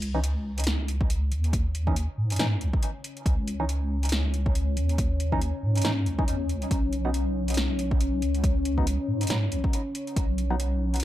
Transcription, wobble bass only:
0, 0, Header, 1, 2, 480
1, 0, Start_track
1, 0, Key_signature, 4, "minor"
1, 0, Tempo, 431655
1, 1702, Time_signature, 4, 2, 24, 8
1, 12278, End_track
2, 0, Start_track
2, 0, Title_t, "Wobble bass"
2, 0, Program_c, 0, 39
2, 0, Note_on_c, 0, 37, 97
2, 1462, Note_on_c, 0, 39, 88
2, 1478, Note_off_c, 0, 37, 0
2, 2302, Note_off_c, 0, 39, 0
2, 2423, Note_on_c, 0, 44, 93
2, 2646, Note_off_c, 0, 44, 0
2, 2663, Note_on_c, 0, 44, 99
2, 2903, Note_on_c, 0, 37, 105
2, 2920, Note_off_c, 0, 44, 0
2, 3030, Note_off_c, 0, 37, 0
2, 3622, Note_on_c, 0, 37, 99
2, 5302, Note_on_c, 0, 39, 88
2, 5319, Note_off_c, 0, 37, 0
2, 6143, Note_off_c, 0, 39, 0
2, 6262, Note_on_c, 0, 44, 95
2, 6486, Note_off_c, 0, 44, 0
2, 6502, Note_on_c, 0, 44, 100
2, 6741, Note_on_c, 0, 37, 103
2, 6758, Note_off_c, 0, 44, 0
2, 6981, Note_on_c, 0, 40, 93
2, 6998, Note_off_c, 0, 37, 0
2, 7222, Note_on_c, 0, 37, 88
2, 7238, Note_off_c, 0, 40, 0
2, 7446, Note_off_c, 0, 37, 0
2, 7461, Note_on_c, 0, 35, 99
2, 9140, Note_on_c, 0, 37, 89
2, 9157, Note_off_c, 0, 35, 0
2, 9982, Note_off_c, 0, 37, 0
2, 10101, Note_on_c, 0, 44, 97
2, 10325, Note_off_c, 0, 44, 0
2, 10342, Note_on_c, 0, 44, 100
2, 10580, Note_on_c, 0, 35, 106
2, 10597, Note_off_c, 0, 44, 0
2, 10708, Note_off_c, 0, 35, 0
2, 11303, Note_on_c, 0, 35, 100
2, 12278, Note_off_c, 0, 35, 0
2, 12278, End_track
0, 0, End_of_file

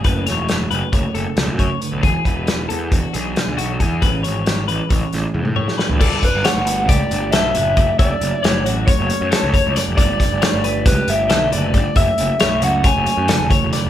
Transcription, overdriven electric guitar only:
0, 0, Header, 1, 2, 480
1, 0, Start_track
1, 0, Tempo, 441501
1, 51, Time_signature, 9, 3, 24, 8
1, 15110, End_track
2, 0, Start_track
2, 0, Title_t, "Overdriven electric guitar"
2, 0, Program_c, 0, 29
2, 6536, Note_on_c, 0, 69, 84
2, 6784, Note_off_c, 0, 69, 0
2, 6786, Note_on_c, 0, 71, 82
2, 7005, Note_off_c, 0, 71, 0
2, 7014, Note_on_c, 0, 78, 98
2, 7492, Note_off_c, 0, 78, 0
2, 7497, Note_on_c, 0, 74, 94
2, 7957, Note_off_c, 0, 74, 0
2, 7961, Note_on_c, 0, 76, 99
2, 8644, Note_off_c, 0, 76, 0
2, 8689, Note_on_c, 0, 74, 77
2, 9167, Note_off_c, 0, 74, 0
2, 9167, Note_on_c, 0, 73, 77
2, 9368, Note_off_c, 0, 73, 0
2, 9643, Note_on_c, 0, 73, 93
2, 10564, Note_off_c, 0, 73, 0
2, 10841, Note_on_c, 0, 74, 86
2, 11817, Note_on_c, 0, 71, 90
2, 11835, Note_off_c, 0, 74, 0
2, 12062, Note_off_c, 0, 71, 0
2, 12067, Note_on_c, 0, 76, 92
2, 12524, Note_off_c, 0, 76, 0
2, 12529, Note_on_c, 0, 74, 93
2, 13011, Note_off_c, 0, 74, 0
2, 13015, Note_on_c, 0, 76, 98
2, 13740, Note_off_c, 0, 76, 0
2, 13744, Note_on_c, 0, 78, 89
2, 13984, Note_off_c, 0, 78, 0
2, 13990, Note_on_c, 0, 80, 87
2, 14656, Note_off_c, 0, 80, 0
2, 15110, End_track
0, 0, End_of_file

